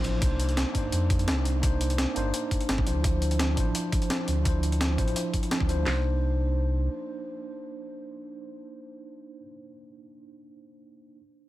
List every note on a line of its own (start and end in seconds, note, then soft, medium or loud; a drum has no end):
0.00 0.20 A1 medium
0.00 0.24 F3 medium
0.00 0.21 D4 medium
0.00 0.24 E4 medium
0.00 0.24 C5 loud
0.04 closed hi-hat medium
0.04 ride medium
0.19 0.65 C2 loud
0.19 0.71 A#3 medium
0.19 0.72 D4 medium
0.19 0.73 D#4 medium
0.19 kick loud
0.19 closed hi-hat medium
0.25 0.74 C5 medium
0.40 closed hi-hat medium
0.49 closed hi-hat soft
0.57 snare loud
0.57 closed hi-hat medium
0.72 0.91 G1 medium
0.72 1.59 A#3 medium
0.72 1.61 D4 medium
0.72 1.62 D#4 medium
0.72 kick medium
0.72 closed hi-hat medium
0.78 1.62 C5 medium
0.92 1.29 F2 loud
0.92 closed hi-hat medium
1.10 kick loud
1.10 closed hi-hat medium
1.19 closed hi-hat soft
1.28 2.06 C2 medium
1.28 snare loud
1.28 closed hi-hat medium
1.45 closed hi-hat medium
1.60 2.12 A#3 medium
1.60 2.13 D4 medium
1.60 2.14 D#4 medium
1.60 kick loud
1.60 closed hi-hat medium
1.66 2.15 C5 medium
1.81 closed hi-hat medium
1.90 closed hi-hat soft
1.98 snare loud
1.98 closed hi-hat medium
2.14 2.32 G1 medium
2.14 2.26 A#3 medium
2.14 2.26 D4 medium
2.14 2.27 D#4 medium
2.14 2.27 C5 medium
2.14 closed hi-hat medium
2.34 closed hi-hat medium
2.51 kick medium
2.51 closed hi-hat medium
2.61 closed hi-hat soft
2.69 2.88 G1 loud
2.69 snare loud
2.69 closed hi-hat medium
2.78 kick loud
2.85 3.56 D2 medium
2.85 3.00 F3 medium
2.85 3.02 D4 medium
2.85 3.02 E4 medium
2.85 3.03 C5 medium
2.85 closed hi-hat medium
3.01 3.53 F3 medium
3.01 3.55 D4 medium
3.01 3.56 E4 medium
3.01 kick loud
3.01 closed hi-hat medium
3.07 3.57 C5 medium
3.22 closed hi-hat medium
3.31 closed hi-hat soft
3.39 snare loud
3.39 closed hi-hat medium
3.54 3.73 A1 medium
3.54 4.41 F3 medium
3.54 4.43 D4 medium
3.54 4.44 E4 medium
3.54 kick medium
3.54 closed hi-hat medium
3.60 4.45 C5 medium
3.75 closed hi-hat medium
3.92 kick medium
3.92 closed hi-hat medium
4.02 closed hi-hat soft
4.10 snare loud
4.10 closed hi-hat medium
4.28 4.97 D2 medium
4.28 closed hi-hat medium
4.42 4.95 F3 medium
4.42 4.96 D4 medium
4.42 4.97 E4 medium
4.42 kick loud
4.42 closed hi-hat medium
4.48 4.98 C5 medium
4.63 closed hi-hat medium
4.72 closed hi-hat soft
4.81 snare loud
4.81 closed hi-hat medium
4.97 5.14 A1 medium
4.97 5.08 F3 medium
4.97 5.08 D4 medium
4.97 5.09 E4 medium
4.97 5.09 C5 medium
4.97 kick medium
4.97 closed hi-hat medium
5.08 closed hi-hat soft
5.16 closed hi-hat medium
5.34 kick medium
5.34 closed hi-hat medium
5.43 closed hi-hat soft
5.51 snare loud
5.51 closed hi-hat medium
5.60 5.85 D2 medium
5.60 kick loud
5.67 5.84 F3 medium
5.67 5.84 D4 medium
5.67 5.85 E4 medium
5.67 5.85 C5 medium
5.67 closed hi-hat medium
5.82 9.38 A#3 medium
5.82 9.41 D4 medium
5.86 6.88 C2 medium
5.86 9.44 D#4 medium
5.86 snare medium
5.91 9.47 C5 medium